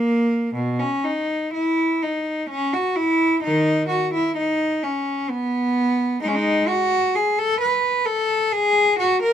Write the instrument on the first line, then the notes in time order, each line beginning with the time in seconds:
cello
Already playing: A#3
0.55 B2
0.80 C#4
1.04 D#4
1.54 E4
2.02 D#4
2.50 C#4
2.73 F#4
2.96 E4
3.43 D#3 D#4
3.88 F#4
4.14 E4
4.37 D#4
4.83 C#4
5.30 B3
6.22 G#3 D#4
6.28 C#4
6.35 D#4
6.68 F#4
7.15 G#4
7.39 A4
7.60 B4
8.06 A4
8.52 G#4
8.99 F#4
9.23 A#4